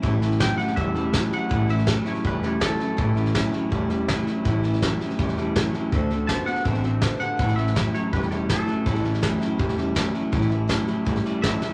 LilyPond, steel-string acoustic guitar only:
\new Staff \with { instrumentName = "Steel-string acoustic guitar" } { \time 4/4 \key a \mixolydian \tempo 4 = 163 <a, e g cis' e'>8 <g cis' e'>8 <a, e g cis' e'>8 <g cis' e'>8 <e g cis' e'>8 <g cis' e'>8 <a, e g cis' e'>8 <g cis' e'>8 | <a, e g cis' e'>8 <g cis' e'>8 <a, e g cis' e'>8 <g cis' e'>8 <e g cis' e'>8 <g cis' e'>8 <a, e g cis' e'>8 <g cis' e'>8 | <a, e g cis' e'>8 <g cis' e'>8 <a, e g cis' e'>8 <g cis' e'>8 <e g cis' e'>8 <g cis' e'>8 <a, e g cis' e'>8 <g cis' e'>8 | <a, e g cis' e'>8 <g cis' e'>8 <a, e g cis' e'>8 <g cis' e'>8 <e g cis' e'>8 <g cis' e'>8 <a, e g cis' e'>8 <g cis' e'>8 |
<d a c' fis'>8 <a c' fis'>8 <d a c' fis'>8 <a c' fis'>8 <d a c' fis'>8 <a c' fis'>8 <d a c' fis'>8 <a c' fis'>8 | <a, e g cis' e'>8 <g cis' e'>8 <a, e g cis' e'>8 <g cis' e'>8 <e g cis' e'>8 <g cis' e'>8 <a, e g cis' e'>8 <g cis' e'>8 | <a, e g cis' e'>8 <g cis' e'>8 <a, e g cis' e'>8 <g cis' e'>8 <e g cis' e'>8 <g cis' e'>8 <a, e g cis' e'>8 <g cis' e'>8 | <a, e g cis' e'>8 <g cis' e'>8 <a, e g cis' e'>8 <g cis' e'>8 <e g cis' e'>8 <g cis' e'>8 <a, e g cis' e'>8 <g cis' e'>8 | }